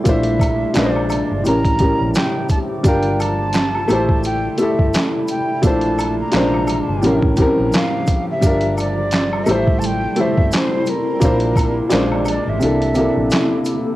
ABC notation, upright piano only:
X:1
M:4/4
L:1/8
Q:"Swing 16ths" 1/4=86
K:Aphr
V:1 name="Upright piano"
[B,,A,DEc]2 [B,,_A,D=Bc]2 [=A,,G,^C_B] [A,,G,CB]2 z | [G,DFB]3 [A,EGc]2 [A,EGA]2 z | [B,,A,DEc]2 [B,,_A,Dc]2 [=A,,G,^CB] [A,,G,=C^CB]2 z | [G,DFB]3 [A,EGc]2 [A,EGc]2 z |
[B,,B,DEc]2 [B,,_A,Dc]2 [C,B,DE=A] [C,B,DEA]2 z |]